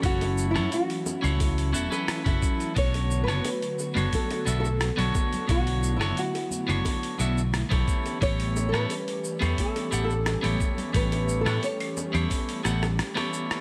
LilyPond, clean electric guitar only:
\new Staff \with { instrumentName = "Clean electric guitar" } { \time 4/4 \key b \minor \tempo 4 = 88 <cis' e' fis' a' cis''>8. <cis' e' fis' a' cis''>16 r8. <cis' e' fis' a' cis''>8. <cis' e' fis' a' e''>16 <cis' e' fis' a' b'>8 <cis' e' fis' a' e''>8. | <b d' fis' a' cis''>8. <b d' fis' a' cis''>16 r8. <b d' fis' a' cis''>8. <b d' fis' a' e''>16 r8 <b d' fis' a' cis''>8. | <b d' fis' a' cis''>8. <b d' fis' a' cis''>16 r8. <b d' fis' a' cis''>8. <b d' fis' a' e''>16 r8 <b e' g' a' cis''>8. | <b e' g' a' cis''>8. <b e' g' a' cis''>16 r8. <b e' g' a' cis''>8. <b e' g' a' fis''>16 r8 <b e' g' a' cis''>8. |
<b e' g' a' cis''>8. <b e' g' a' cis''>16 r8. <b e' g' a' cis''>8. <b e' g' a' fis''>16 r8 <b e' g' a' cis''>8. | }